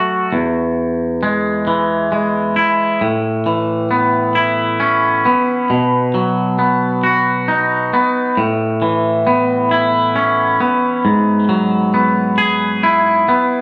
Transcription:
0.00 0.33 F#3 medium
0.00 0.33 A3 medium
0.00 0.33 F#4 medium
0.33 2.57 E2 medium
1.23 2.11 G#3 medium
1.67 3.01 E3 medium
2.12 3.02 G#3 medium
2.56 3.01 E4 medium
3.01 5.25 A2 medium
3.46 5.70 E3 medium
3.91 5.25 B3 medium
4.35 5.69 E4 medium
4.80 5.69 C#4 medium
5.25 6.58 B3 medium
5.70 7.93 B2 medium
6.14 8.37 F#3 medium
6.59 7.93 B3 medium
7.04 8.37 F#4 medium
7.48 8.37 D#4 medium
7.93 8.40 B3 medium
8.37 10.60 A2 medium
8.82 11.48 E3 medium
9.27 10.60 B3 medium
9.71 11.52 E4 medium
10.16 11.05 C#4 medium
10.60 11.93 B3 medium
11.05 13.28 G#2 medium
11.49 13.61 F#3 medium
11.94 13.27 B3 medium
12.38 13.61 G#4 medium
12.83 13.61 E4 medium
13.29 13.61 B3 medium

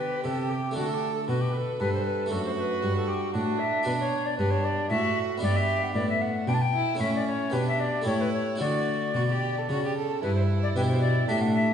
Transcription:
0.00 0.20 D3 soft
0.00 0.21 D3 medium
0.00 0.70 B3 soft
0.00 0.71 D4 soft
0.00 0.71 G4 soft
0.00 0.76 G4 medium
0.00 0.23 B4 medium
0.23 0.72 C3 soft
0.23 0.73 C3 medium
0.23 0.51 A4 medium
0.49 0.75 G4 medium
0.71 1.24 A3 soft
0.71 2.26 D4 soft
0.76 1.24 D3 soft
0.76 1.24 D3 medium
0.76 0.90 F#4 medium
0.76 1.27 A4 medium
0.89 0.95 A4 medium
0.94 1.14 G4 medium
1.15 1.21 A4 medium
1.27 1.76 B2 soft
1.27 1.76 B2 medium
1.27 1.42 F#4 medium
1.27 1.81 B4 medium
1.41 1.55 G4 medium
1.53 1.79 A4 medium
1.53 1.58 B4 medium
1.79 2.27 G2 soft
1.79 2.28 G2 medium
1.79 2.33 A4 medium
1.79 1.92 B4 medium
1.93 2.05 C5 medium
2.05 2.33 B4 medium
2.26 2.79 A3 soft
2.26 3.80 D4 soft
2.31 2.78 F#2 soft
2.31 2.79 F#2 medium
2.31 3.34 F#4 medium
2.31 2.44 A4 medium
2.45 2.51 C5 medium
2.56 2.95 B4 medium
2.56 2.61 C5 medium
2.83 3.30 G2 soft
2.83 3.31 G2 medium
2.96 3.09 A4 medium
3.08 3.35 G4 medium
3.34 3.82 A2 soft
3.34 3.83 A2 medium
3.34 4.36 D4 medium
3.34 3.61 F#4 medium
3.59 3.85 E5 medium
3.83 4.34 B2 soft
3.83 4.35 B2 medium
3.83 5.37 D4 soft
3.83 5.38 F#4 soft
3.83 3.92 B4 medium
4.00 4.27 C#5 medium
4.26 4.37 D5 medium
4.38 4.87 G2 medium
4.38 4.87 G2 soft
4.38 4.90 D4 medium
4.38 4.52 B4 medium
4.51 4.66 C#5 medium
4.64 4.89 D5 medium
4.89 5.39 A2 medium
4.89 5.42 F#4 medium
4.89 5.19 E5 medium
5.38 6.94 B3 soft
5.38 6.94 D4 soft
5.38 6.95 E4 soft
5.42 5.91 G2 soft
5.42 5.91 G2 medium
5.42 5.94 G4 medium
5.42 5.58 D5 medium
5.56 5.85 E5 medium
5.83 5.94 F#5 medium
5.94 6.44 A2 medium
5.94 6.44 A2 soft
5.94 6.47 B3 medium
5.94 6.08 D5 medium
6.09 6.23 E5 medium
6.22 6.50 F#5 medium
6.47 6.96 B2 medium
6.47 6.96 B2 soft
6.47 6.56 D4 medium
6.47 6.55 G5 medium
6.54 6.63 A5 medium
6.62 7.02 G5 medium
6.74 6.99 E4 medium
6.95 7.49 A3 soft
6.95 7.49 C#4 soft
6.95 7.50 E4 soft
6.99 7.49 A2 medium
6.99 7.55 C#4 medium
6.99 7.13 E5 medium
7.15 7.26 D5 medium
7.27 7.54 C#5 medium
7.50 8.03 B2 medium
7.50 8.02 B2 soft
7.50 8.03 B3 soft
7.50 8.05 D4 medium
7.50 8.03 G4 soft
7.50 7.66 B4 medium
7.68 7.81 E5 medium
7.80 8.05 D5 medium
8.02 8.54 A3 soft
8.02 8.57 E4 soft
8.02 8.58 G4 soft
8.02 8.22 C#5 medium
8.06 8.57 A2 medium
8.06 8.57 A2 soft
8.06 8.63 E4 medium
8.21 8.32 B4 medium
8.33 8.60 C#5 medium
8.56 9.11 A3 soft
8.56 10.17 D4 soft
8.56 10.18 F#4 soft
8.60 9.11 D3 medium
8.60 9.11 D3 soft
8.60 9.10 F#4 medium
8.60 9.93 D5 medium
9.14 9.65 B2 medium
9.14 9.65 B2 soft
9.14 9.21 F#4 medium
9.29 9.60 G4 medium
9.58 9.69 A4 medium
9.69 10.19 C#3 medium
9.69 10.19 C#3 soft
9.69 9.83 F#4 medium
9.84 9.96 G4 medium
9.97 10.23 A4 medium
10.22 10.72 G2 medium
10.22 10.72 G2 soft
10.22 11.30 E4 medium
10.22 10.34 B4 medium
10.35 10.41 C5 medium
10.63 10.69 D5 medium
10.75 11.27 B2 medium
10.75 11.25 B2 soft
10.75 11.14 D4 soft
10.75 11.14 G4 soft
10.75 10.81 B4 medium
10.89 11.00 C5 medium
11.01 11.27 D5 medium
11.27 11.74 A2 medium
11.27 11.74 A2 soft
11.27 11.74 D4 medium
11.27 11.66 D4 soft
11.27 11.67 G4 soft
11.27 11.43 E5 medium
11.41 11.53 F#5 medium
11.54 11.74 E5 medium

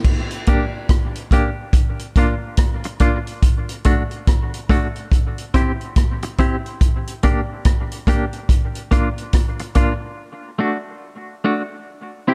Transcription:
0.04 kick loud
0.04 crash medium
0.31 closed hi-hat medium
0.46 0.64 A#3 medium
0.46 0.65 D4 medium
0.46 0.65 G4 loud
0.46 kick medium
0.46 closed hi-hat medium
0.89 kick loud
0.89 cross-stick loud
0.89 closed hi-hat medium
1.15 closed hi-hat medium
1.31 1.49 A#3 medium
1.31 1.49 D4 medium
1.31 1.49 G4 medium
1.31 kick medium
1.31 closed hi-hat medium
1.73 kick medium
1.73 closed hi-hat medium
1.99 closed hi-hat soft
2.16 2.33 A#3 medium
2.16 2.34 D4 medium
2.16 2.34 F4 medium
2.16 kick medium
2.16 closed hi-hat medium
2.57 kick loud
2.57 cross-stick loud
2.57 closed hi-hat medium
2.84 muted clean electric guitar stroke soft
2.84 closed hi-hat soft
3.00 3.17 A#3 medium
3.00 3.17 D4 medium
3.00 3.18 F4 loud
3.00 kick medium
3.00 closed hi-hat medium
3.27 closed hi-hat soft
3.42 kick loud
3.42 closed hi-hat medium
3.69 closed hi-hat medium
3.84 4.02 A3 medium
3.84 4.02 D4 medium
3.84 4.02 F#4 medium
3.84 kick medium
3.84 closed hi-hat medium
4.11 closed hi-hat soft
4.27 kick loud
4.27 cross-stick loud
4.27 closed hi-hat medium
4.54 closed hi-hat medium
4.69 4.86 A3 medium
4.69 4.86 D4 medium
4.69 4.87 F#4 medium
4.69 kick medium
4.69 closed hi-hat medium
4.96 closed hi-hat soft
5.12 kick loud
5.12 closed hi-hat medium
5.38 closed hi-hat soft
5.54 5.71 C4 medium
5.54 5.71 E4 medium
5.54 5.71 G4 medium
5.54 kick loud
5.54 closed hi-hat medium
5.81 closed hi-hat soft
5.96 kick loud
5.96 cross-stick loud
5.96 closed hi-hat medium
6.22 muted clean electric guitar stroke soft
6.22 closed hi-hat medium
6.38 6.55 C4 medium
6.38 6.56 E4 medium
6.38 6.56 G4 medium
6.38 kick medium
6.38 closed hi-hat medium
6.66 closed hi-hat soft
6.81 kick loud
6.81 closed hi-hat medium
7.07 closed hi-hat medium
7.23 7.40 A#3 medium
7.23 7.40 D4 medium
7.23 7.40 G4 medium
7.23 kick medium
7.23 closed hi-hat medium
7.65 kick loud
7.65 cross-stick loud
7.65 closed hi-hat medium
7.92 closed hi-hat medium
8.07 8.24 A#3 medium
8.07 8.24 D4 medium
8.07 8.25 G4 medium
8.07 kick medium
8.07 closed hi-hat medium
8.33 closed hi-hat soft
8.49 kick loud
8.49 closed hi-hat medium
8.75 closed hi-hat soft
8.91 9.08 A#3 medium
8.91 9.09 D4 medium
8.91 9.09 F4 medium
8.91 kick medium
8.91 closed hi-hat medium
9.18 closed hi-hat soft
9.33 kick loud
9.33 cross-stick loud
9.33 closed hi-hat medium
9.59 muted clean electric guitar stroke soft
9.59 closed hi-hat medium
9.75 9.92 A#3 medium
9.75 9.93 D4 medium
9.75 9.93 F4 loud
9.75 kick medium
9.75 closed hi-hat medium
10.59 10.76 A3 medium
10.59 10.77 D4 medium
10.59 10.77 F#4 medium
11.44 11.61 A3 medium
11.44 11.62 D4 medium
11.44 11.62 F#4 medium
12.28 12.34 C4 medium
12.28 12.34 E4 medium
12.28 12.34 G4 medium

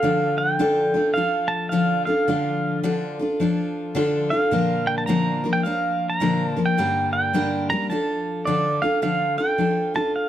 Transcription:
0.00 0.59 D3 medium
0.00 0.59 F3 medium
0.00 0.59 D4 medium
0.00 0.60 F4 medium
0.00 0.40 F5 medium
0.04 0.60 A4 medium
0.38 1.13 G5 medium
0.59 0.94 D3 medium
0.59 0.95 F3 medium
0.59 0.95 D4 medium
0.59 0.94 F4 medium
0.59 0.93 A4 medium
0.94 1.16 D4 soft
0.94 1.15 F4 soft
0.94 1.15 A4 medium
1.14 1.72 F3 medium
1.14 1.72 D4 medium
1.14 1.73 F4 medium
1.14 1.51 F5 loud
1.18 1.73 A4 medium
1.48 1.68 A5 loud
1.69 2.07 D3 medium
1.69 2.07 F3 medium
1.69 2.07 D4 medium
1.69 2.07 F4 medium
1.69 2.04 F5 medium
1.74 2.06 A4 medium
2.05 2.28 F4 soft
2.05 2.27 A4 medium
2.05 2.79 F5 medium
2.10 2.27 D4 soft
2.28 2.82 D3 medium
2.28 2.83 F3 medium
2.28 2.83 D4 medium
2.28 2.84 F4 medium
2.28 2.84 A4 medium
2.83 3.19 D3 medium
2.83 3.19 F3 medium
2.83 3.19 D4 medium
2.83 3.20 F4 medium
2.83 3.18 A4 medium
3.19 3.40 D4 soft
3.19 3.40 F4 medium
3.19 3.40 A4 medium
3.40 3.94 F3 medium
3.40 3.95 D4 medium
3.40 3.95 F4 medium
3.40 3.95 A4 medium
3.95 4.31 D3 medium
3.95 4.31 F3 medium
3.95 4.31 D4 medium
3.95 4.32 F4 medium
3.95 4.30 A4 loud
4.30 4.52 D4 soft
4.30 4.52 F4 soft
4.30 4.52 A4 medium
4.30 4.89 F5 medium
4.51 5.06 A#2 medium
4.51 5.07 D3 medium
4.51 5.07 F3 medium
4.51 5.08 A#3 medium
4.51 5.09 D4 medium
4.51 5.09 A#4 medium
4.87 4.97 G5 medium
4.98 5.06 A5 medium
5.06 5.43 A#2 medium
5.06 5.44 D3 medium
5.06 5.44 F3 medium
5.06 5.44 A#3 medium
5.06 5.44 D4 medium
5.06 5.43 A#4 medium
5.06 5.52 A#5 loud
5.44 5.64 F3 medium
5.44 5.65 A#3 soft
5.44 5.65 D4 medium
5.44 5.64 A#4 medium
5.53 5.64 G5 medium
5.63 6.20 F3 medium
5.63 6.21 A#3 medium
5.63 6.21 D4 medium
5.63 6.22 A#4 medium
5.63 6.10 F5 loud
6.10 6.48 A#5 loud
6.20 6.56 A#2 medium
6.20 6.56 D3 medium
6.20 6.57 F3 medium
6.20 6.56 A#3 medium
6.20 6.56 D4 medium
6.20 6.55 A#4 medium
6.48 6.62 A5 loud
6.56 6.78 F3 soft
6.56 6.77 A#3 soft
6.56 6.77 D4 soft
6.56 6.77 A#4 medium
6.66 7.12 G5 medium
6.78 7.32 G2 medium
6.78 7.33 D3 medium
6.78 7.33 G3 medium
6.78 7.34 A#3 medium
6.78 7.34 D4 medium
6.78 7.34 A#4 medium
7.13 7.69 G5 medium
7.33 7.69 G2 medium
7.33 7.69 D3 medium
7.33 7.69 G3 medium
7.33 7.70 A#3 medium
7.33 7.70 D4 medium
7.33 7.69 A#4 medium
7.70 7.89 G3 soft
7.70 7.91 A#3 medium
7.70 7.90 A#4 medium
7.70 7.89 A#5 medium
7.90 8.46 F3 medium
7.90 8.46 D4 medium
7.90 8.47 F4 medium
7.90 8.47 A4 medium
7.90 8.77 A5 medium
8.45 8.82 D3 medium
8.45 8.82 F3 medium
8.45 8.82 D4 medium
8.45 8.82 F4 medium
8.45 8.81 A4 medium
8.45 8.82 D5 medium
8.82 9.01 D4 soft
8.82 9.02 F4 medium
8.82 9.02 A4 medium
8.82 9.00 F5 medium
9.02 9.38 D3 medium
9.02 9.38 F3 medium
9.02 9.38 D4 medium
9.02 9.38 F4 medium
9.02 9.37 A4 medium
9.02 9.35 F5 medium
9.38 9.58 D4 soft
9.38 9.58 F4 soft
9.38 9.58 A4 medium
9.38 9.95 G5 medium
9.58 9.94 F3 medium
9.58 9.94 D4 medium
9.58 9.94 F4 medium
9.58 9.93 A4 medium
9.94 10.29 D4 soft
9.94 10.29 F4 soft
9.94 10.29 A4 soft
9.94 10.16 A5 medium
10.16 10.29 F5 medium

